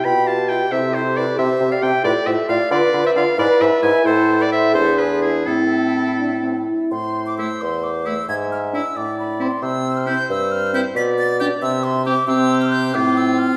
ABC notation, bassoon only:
X:1
M:6/8
L:1/8
Q:3/8=90
K:Am
V:1 name="Bassoon" clef=bass
B,,3 C,3 | C, C, C, A,, A,, A,, | D, D, D, ^G,, G,, G,, | A,,3 E,,3 |
A,,4- A,, z | A,,3 E,,3 | ^G,,3 A,,3 | C,3 G,,3 |
B,,3 C,3 | C,3 A,,3 |]